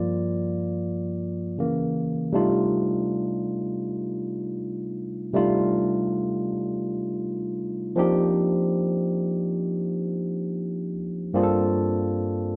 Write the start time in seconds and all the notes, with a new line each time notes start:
Already playing: G2 F3 A#3 F4 D5
1.58 C#3 E3 A#3
2.32 C3 G3 A3 D4 D#4 F4
5.33 C3 G3 A3 D4 D#4 F4
7.96 F3 A#3 C4 D4 D#4 G4
11.33 G2 A#3 C4 D4 F4 G#4
11.43 A4